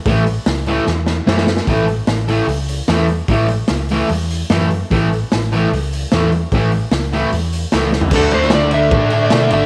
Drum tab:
CC |----------------|----------------|----------------|----------------|
RD |----------------|----------------|----------------|----------------|
HH |o-o-o-o---------|o-o-o-o-o-o-o-o-|o-o-o-o-o-o-o-o-|o-o-o-o-o-o-o-o-|
SD |----o---o-o-oooo|----o-------o---|----o-------o---|----o-------o---|
FT |----------------|----------------|----------------|----------------|
BD |o---------------|o---------------|o---------------|o---------------|

CC |----------------|x---------------|
RD |----------------|--x-x-x-x-x-x-x-|
HH |o-o-o-o-o-o-o---|----------------|
SD |----o-------o-o-|---oo-------o---|
FT |---------------o|----------------|
BD |o---------------|o-------o-------|